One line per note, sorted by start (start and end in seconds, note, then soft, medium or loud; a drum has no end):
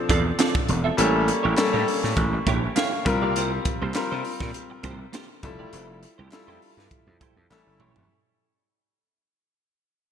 0.00 1.00 F3 medium
0.00 1.00 C4 medium
0.00 1.00 D4 medium
0.00 0.99 A4 medium
0.09 0.30 E2 medium
0.09 0.23 C4 medium
0.09 0.24 F4 medium
0.09 0.24 A4 medium
0.09 0.24 D5 medium
0.09 kick medium
0.09 closed hi-hat medium
0.25 muted clean electric guitar stroke soft
0.39 0.53 C4 medium
0.39 0.53 F4 medium
0.39 0.54 A4 medium
0.39 0.54 D5 medium
0.39 snare loud
0.39 clap loud
0.39 closed hi-hat medium
0.55 muted clean electric guitar stroke soft
0.55 kick medium
0.69 0.89 E1 medium
0.69 muted clean electric guitar stroke soft
0.69 closed hi-hat medium
0.84 0.95 C4 soft
0.84 0.94 F4 medium
0.84 0.94 A4 medium
0.84 0.94 E5 medium
0.97 1.30 A1 loud
0.97 1.50 G3 medium
0.97 1.12 A#3 medium
0.97 1.50 A#3 medium
0.97 1.50 C#4 medium
0.97 1.13 E4 medium
0.97 1.13 G4 medium
0.97 1.50 A4 medium
0.97 1.12 C#5 medium
0.97 closed hi-hat loud
1.14 muted clean electric guitar stroke soft
1.27 muted clean electric guitar stroke soft
1.27 closed hi-hat medium
1.43 1.54 A1 medium
1.43 1.54 A#3 medium
1.43 1.54 E4 medium
1.43 1.53 G4 medium
1.43 1.53 C#5 medium
1.57 2.60 G3 medium
1.57 2.61 A#3 medium
1.57 2.61 C#4 medium
1.57 2.61 A4 medium
1.57 muted clean electric guitar stroke soft
1.57 snare loud
1.57 clap medium
1.57 closed hi-hat medium
1.73 1.83 A2 loud
1.73 1.86 A#3 medium
1.73 1.86 E4 medium
1.73 1.86 G4 medium
1.73 1.85 C#5 medium
1.87 muted clean electric guitar stroke soft
1.87 open hi-hat medium
2.03 2.13 A2 medium
2.03 muted clean electric guitar stroke soft
2.03 snare soft
2.17 2.37 A1 medium
2.17 kick medium
2.17 closed hi-hat medium
2.33 muted clean electric guitar stroke soft
2.47 2.67 A#1 medium
2.47 2.61 A#3 medium
2.47 2.61 E4 medium
2.47 2.61 G4 medium
2.47 2.62 C#5 medium
2.47 kick medium
2.47 closed hi-hat medium
2.63 muted clean electric guitar stroke soft
2.76 2.90 A#3 loud
2.76 2.91 E4 medium
2.76 2.91 G4 loud
2.76 2.91 C#5 loud
2.76 3.31 F5 medium
2.76 snare loud
2.76 clap loud
2.76 closed hi-hat medium
2.92 muted clean electric guitar stroke soft
3.05 3.58 C2 medium
3.05 3.83 G3 medium
3.05 3.83 C4 medium
3.05 3.84 F4 medium
3.05 3.84 A#4 medium
3.05 muted clean electric guitar stroke soft
3.05 kick loud
3.05 closed hi-hat medium
3.22 3.32 A#3 medium
3.22 3.32 F4 medium
3.22 3.32 G4 medium
3.22 3.31 D5 medium
3.36 3.50 A#3 medium
3.36 3.50 F4 medium
3.36 3.50 G4 loud
3.36 3.51 C5 loud
3.36 closed hi-hat medium
3.52 muted clean electric guitar stroke soft
3.65 muted clean electric guitar stroke soft
3.65 kick loud
3.65 closed hi-hat medium
3.82 3.91 C2 medium
3.82 3.92 A#3 medium
3.82 3.91 F4 medium
3.82 3.91 G4 medium
3.82 3.91 C5 medium
3.94 4.98 G3 medium
3.94 4.98 C4 medium
3.94 4.98 F4 medium
3.94 4.99 A#4 loud
3.94 muted clean electric guitar stroke soft
3.94 snare loud
3.94 clap medium
3.94 closed hi-hat medium
4.11 4.21 C3 loud
4.11 4.23 A#3 medium
4.11 4.24 F4 medium
4.11 4.24 G4 medium
4.11 4.23 C5 medium
4.24 muted clean electric guitar stroke soft
4.24 open hi-hat medium
4.40 4.50 A#2 medium
4.40 muted clean electric guitar stroke soft
4.40 kick medium
4.40 snare soft
4.54 closed hi-hat medium
4.70 muted clean electric guitar stroke soft
4.83 5.04 C2 medium
4.83 4.98 A#3 medium
4.83 4.98 F4 medium
4.83 4.98 G4 medium
4.83 4.98 C5 loud
4.83 kick medium
4.83 closed hi-hat medium
4.99 muted clean electric guitar stroke soft
5.12 5.27 A#3 medium
5.12 5.27 F4 medium
5.12 5.28 G4 loud
5.12 5.28 C5 medium
5.12 snare loud
5.12 clap medium
5.12 closed hi-hat medium
5.29 muted clean electric guitar stroke soft
5.43 5.64 F1 loud
5.43 6.21 G3 medium
5.43 6.21 E4 medium
5.43 6.21 F4 medium
5.43 6.21 A4 loud
5.43 muted clean electric guitar stroke soft
5.43 kick loud
5.43 closed hi-hat medium
5.59 5.69 A3 medium
5.59 5.69 E4 soft
5.59 5.69 G4 medium
5.59 5.68 D5 medium
5.73 6.04 F1 loud
5.73 5.87 A3 medium
5.73 5.87 E4 medium
5.73 5.87 G4 medium
5.73 5.87 C5 medium
5.73 closed hi-hat loud
5.89 muted clean electric guitar stroke medium
6.02 muted clean electric guitar stroke soft
6.02 closed hi-hat medium
6.18 6.28 C2 medium
6.18 6.29 A3 medium
6.18 6.28 E4 medium
6.18 6.28 G4 medium
6.18 6.28 C5 medium
6.31 7.35 G3 medium
6.31 7.35 E4 medium
6.31 7.36 F4 medium
6.31 7.36 A4 medium
6.31 muted clean electric guitar stroke soft
6.31 snare loud
6.31 clap medium
6.31 closed hi-hat medium
6.47 6.57 F2 medium
6.47 6.60 A3 medium
6.47 6.60 E4 medium
6.47 6.60 G4 medium
6.47 6.60 C5 medium
6.62 muted clean electric guitar stroke soft
6.62 open hi-hat medium
6.77 6.87 G2 medium
6.77 muted clean electric guitar stroke soft
6.77 snare soft
6.91 kick medium
6.91 closed hi-hat medium
7.07 7.16 F2 loud
7.07 muted clean electric guitar stroke soft
7.20 7.35 A3 medium
7.20 7.35 E4 medium
7.20 7.36 G4 medium
7.20 7.36 C5 medium
7.20 kick medium
7.20 closed hi-hat medium
7.36 7.46 F2 medium
7.36 muted clean electric guitar stroke soft
7.50 7.62 A1 loud
7.50 8.02 G3 medium
7.50 8.03 C#4 medium
7.50 8.03 E4 medium
7.50 8.03 A4 medium
7.50 muted clean electric guitar stroke soft
7.50 snare medium
7.50 clap loud
7.66 7.80 G1 medium
7.66 muted clean electric guitar stroke soft
7.79 7.91 A1 medium
7.79 7.94 A3 medium
7.79 7.94 E4 medium
7.79 7.95 G4 medium
7.79 7.94 C#5 loud
7.79 mid tom medium
7.95 8.05 E1 medium
7.95 muted clean electric guitar stroke soft
7.95 floor tom medium